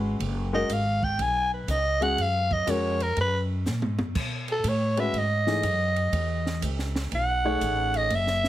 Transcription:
Already playing: G#1 G#3 C#4 F#4 B4
0.19 F#1, ride
0.53 G#3 C#4 F#4 A#4 D#5
0.69 G#1 F5, hi-hat pedal, ride
1.03 G5, kick
1.18 B1 G#5, ride
1.54 B4
1.67 C#2 D#5, hi-hat pedal, ride
2.01 G#3 C#4 F#4 G#4 F#5, ride
2.17 F#2 F5, ride
2.51 D#5, kick
2.66 F2 G#3 C#4 F#4 A#4 C#5, hi-hat pedal, ride
3.00 A#4, ride
3.17 F#2 B4, ride
3.66 A#2, snare, hi-hat pedal
3.82 G#2, high tom
3.98 F#2, high tom
4.15 B2, kick, crash
4.48 A4, ride
4.64 A2, hi-hat pedal, ride
4.68 C#5
4.97 G#3 C#4 F#4 B4 E5, ride
5.13 G#2, ride
5.18 D#5
5.47 E3 A3 D#4 G#4, snare
5.63 F#2, hi-hat pedal, ride
5.96 ride
6.12 E2, ride
6.46 snare
6.62 C#2, hi-hat pedal, ride
6.79 snare
6.96 snare
7.11 B1 F#5, ride
7.45 A3 D#4 G#4 C#5
7.61 A1, hi-hat pedal, ride
7.94 D#5, ride
8.10 F#1, ride
8.15 E5
8.27 snare
8.44 snare

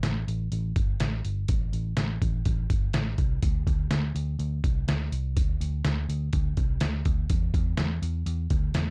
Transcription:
0.03 A1, snare, closed hi-hat
0.28 A1, closed hi-hat
0.52 A1, closed hi-hat
0.76 G1, kick, closed hi-hat
1.00 A1, snare, closed hi-hat
1.25 G1, closed hi-hat
1.48 A1, kick, closed hi-hat
1.73 A1, closed hi-hat
1.97 A1, snare, closed hi-hat
2.22 A1, kick, closed hi-hat
2.45 A1, kick, closed hi-hat
2.70 G1, kick, closed hi-hat
2.93 A1, snare, closed hi-hat
3.18 C2, kick, closed hi-hat
3.43 D2, kick, closed hi-hat
3.67 D2, kick, closed hi-hat
3.91 D2, snare, closed hi-hat
4.15 D2, closed hi-hat
4.39 D2, closed hi-hat
4.64 C2, kick, closed hi-hat
4.88 D2, snare, closed hi-hat
5.12 C2, closed hi-hat
5.37 D2, kick, closed hi-hat
5.61 D2, closed hi-hat
5.85 D2, snare, closed hi-hat
6.09 D2, closed hi-hat
6.33 D2, kick, closed hi-hat
6.57 C2, kick, closed hi-hat
6.80 D2, snare, closed hi-hat
7.05 D2, kick, closed hi-hat
7.30 E2, kick, closed hi-hat
7.54 E2, kick, closed hi-hat
7.77 E2, snare, closed hi-hat
8.02 E2, closed hi-hat
8.26 E2, closed hi-hat
8.50 D2, kick, closed hi-hat
8.74 E2, snare, closed hi-hat

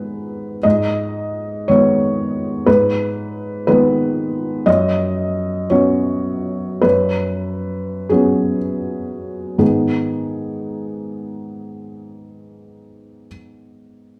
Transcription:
Already playing: G#2 D#3 G#3 B3 G#4 B4
0.63 G#2 D#5
1.68 D#3 G#3 B3 C#5
2.66 G#2 B4
3.67 D#3 G#3 B3 B4
4.66 F#2 D#5
5.70 F#3 B3 C#4 C#5
6.82 F#2 B4
8.09 F#3 B3 C#4 G#4
9.58 G#2 D#3 B3 D#4 G#4

